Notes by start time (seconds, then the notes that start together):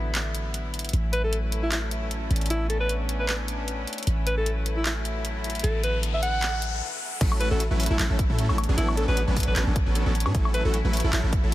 Already playing: A1 D3 F#3 B3 E4
0.15 clap, closed hi-hat
0.35 closed hi-hat
0.54 closed hi-hat
0.74 closed hi-hat
0.79 closed hi-hat
0.85 closed hi-hat
0.89 closed hi-hat
0.93 A1 F#3 A3 C#4 E4, closed hi-hat
1.13 B4, closed hi-hat
1.24 A4
1.33 closed hi-hat
1.52 closed hi-hat
1.63 E4
1.72 E4, clap, closed hi-hat
1.91 closed hi-hat
2.11 closed hi-hat
2.31 A1 B3 D4, closed hi-hat
2.36 closed hi-hat
2.41 closed hi-hat
2.46 closed hi-hat
2.50 E4, closed hi-hat
2.70 A4, closed hi-hat
2.80 B4
2.89 closed hi-hat
3.09 closed hi-hat
3.20 B4
3.28 B4, clap, closed hi-hat
3.48 closed hi-hat
3.68 closed hi-hat
3.87 closed hi-hat
3.93 closed hi-hat
3.98 closed hi-hat
4.03 closed hi-hat
4.07 A1 F#3 A3 E4, closed hi-hat, riser
4.27 B4, closed hi-hat
4.37 A4
4.46 closed hi-hat
4.66 closed hi-hat
4.77 E4
4.86 E4, clap, closed hi-hat
5.05 closed hi-hat
5.25 closed hi-hat
5.44 closed hi-hat
5.50 closed hi-hat
5.55 closed hi-hat
5.59 closed hi-hat
5.64 A1 D3 B3 A4, closed hi-hat
5.84 B4, closed hi-hat
6.03 closed hi-hat
6.14 E5
6.23 F#5, closed hi-hat
6.42 clap, closed hi-hat
6.62 closed hi-hat
7.21 A1 F#3 A3 C#4 E4 A4, kick, closed hi-hat, crash
7.32 high woodblock
7.40 B4, closed hi-hat
7.51 A1 F#3 A3 C#4 E4 F#4 A4
7.60 closed hi-hat
7.71 A1 F#3 A3 C#4 E4 B4
7.80 closed hi-hat, open hi-hat
7.86 E4, closed hi-hat
7.90 A1 F#3 A3 C#4 E4 A4
7.99 A1 F#3 A3 C#4 E4 A4, clap, closed hi-hat
8.10 A1 F#3 A3 C#4 E4 A4
8.19 kick, closed hi-hat
8.30 A2 F#3 A3 C#4 E4 A4
8.39 closed hi-hat
8.49 A1 F#3 A3 C#4 E4 A4, high woodblock
8.58 B3 D4, closed hi-hat, high woodblock
8.64 closed hi-hat
8.69 A1 F#3 B3 C#4 D4 G#4
8.78 A1 F#3 B3 C#4 D4 E4 A4, closed hi-hat
8.88 high woodblock
8.97 A4, closed hi-hat
9.08 A1 F#3 B3 C#4 D4 G#4 B4
9.17 closed hi-hat
9.28 A1 F#3 B3 C#4 D4 B4
9.37 kick, closed hi-hat, open hi-hat
9.43 closed hi-hat
9.47 A1 F#3 B3 C#4 D4 A4 B4
9.56 A1 F#3 B3 C#4 D4 A4 B4, clap, closed hi-hat
9.67 A1 F#3 B3 C#4 D4 A4
9.76 kick, closed hi-hat
9.86 A1 F#3 B3 C#4 D4 A4
9.95 closed hi-hat
10.06 A1 F#3 B3 C#4 D4 A4
10.15 closed hi-hat
10.20 closed hi-hat
10.26 A2 F#3 B3 C#4 D4 G#4, high woodblock
10.35 A1 F#3 A3 C#4 E4 A4, kick, closed hi-hat
10.45 high woodblock
10.54 B4, closed hi-hat
10.65 A1 F#3 A3 C#4 E4 F#4 A4
10.74 closed hi-hat
10.84 A1 F#3 A3 C#4 E4 B4
10.93 closed hi-hat, open hi-hat
11.00 closed hi-hat
11.04 A1 F#3 A3 C#4 E4 A4
11.13 A1 F#3 A3 C#4 E4 A4, clap, closed hi-hat
11.24 A1 F#3 A3 C#4 E4 A4
11.33 kick, closed hi-hat
11.43 A1 F#3 A3 C#4 E4 A4